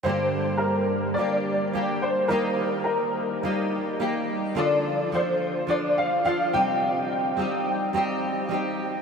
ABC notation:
X:1
M:4/4
L:1/8
Q:"Swing 16ths" 1/4=106
K:Gm
V:1 name="Upright piano"
c2 B2 d2 z c | B2 B2 z4 | d2 c2 d f f g- | g6- g z |]
V:2 name="Steel-string acoustic guitar"
[G,,D,G,B,DG]4 [G,B,DG]2 [G,B,DG]2 | [E,G,B,EG]4 [G,B,EG]2 [G,B,EG]2 | [D,F,DFA]2 [F,DFA]2 [F,DFA]2 [F,DFA] [C,G,CEG]- | [C,G,CEG]2 [G,CEG]2 [G,CEG]2 [G,CEG]2 |]